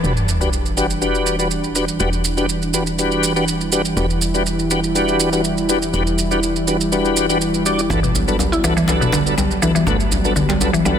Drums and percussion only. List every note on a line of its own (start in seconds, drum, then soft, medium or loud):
0.04 shaker soft
0.17 shaker soft
0.29 shaker medium
0.41 shaker soft
0.53 shaker soft
0.66 shaker soft
0.77 shaker medium
0.90 shaker soft
1.02 shaker soft
1.15 shaker soft
1.26 shaker medium
1.39 shaker soft
1.51 shaker soft
1.64 shaker soft
1.75 shaker medium
1.88 shaker soft
2.00 shaker soft
2.13 shaker soft
2.25 shaker medium
2.37 shaker soft
2.49 shaker medium
2.62 shaker soft
2.74 shaker medium
2.87 shaker soft
2.99 shaker soft
3.12 shaker soft
3.23 shaker medium
3.36 shaker soft
3.48 shaker soft
3.61 shaker soft
3.72 shaker medium
3.85 shaker soft
3.97 shaker soft
4.10 shaker soft
4.22 shaker medium
4.34 shaker soft
4.46 shaker medium
4.59 shaker soft
4.71 shaker medium
4.84 shaker soft
4.95 shaker soft
5.08 shaker soft
5.20 shaker medium
5.33 shaker soft
5.44 shaker medium
5.58 shaker soft
5.69 shaker medium
5.82 shaker soft
5.94 shaker soft
6.07 shaker soft
6.18 shaker medium
6.31 shaker soft
6.43 shaker soft
6.56 shaker soft
6.68 shaker medium
6.81 shaker soft
6.92 shaker soft
7.05 shaker soft
7.17 shaker medium
7.30 shaker soft
7.41 shaker soft
7.54 shaker soft
7.66 shaker medium
7.79 shaker soft
7.90 djembe tone medium
7.90 shaker soft
8.04 shaker soft
8.15 djembe tone medium
8.15 shaker medium
8.28 shaker soft
8.39 djembe tone medium
8.39 shaker soft
8.53 shaker soft
8.64 djembe tone medium
8.64 shaker medium
8.77 shaker soft
8.88 djembe slap medium
8.88 djembe tone medium
8.88 shaker soft
9.02 shaker soft
9.12 djembe slap medium
9.12 djembe tone medium
9.12 shaker medium
9.27 shaker soft
9.38 djembe tone medium
9.38 shaker soft
9.51 shaker soft
9.62 djembe tone medium
9.62 shaker medium
9.76 shaker soft
9.87 djembe tone medium
9.87 shaker soft
10.00 shaker soft
10.12 djembe tone medium
10.12 shaker medium
10.25 shaker soft
10.36 djembe tone medium
10.36 shaker soft
10.49 djembe slap medium
10.49 shaker soft
10.61 djembe tone medium
10.61 shaker medium
10.74 shaker soft
10.85 djembe tone medium
10.85 shaker soft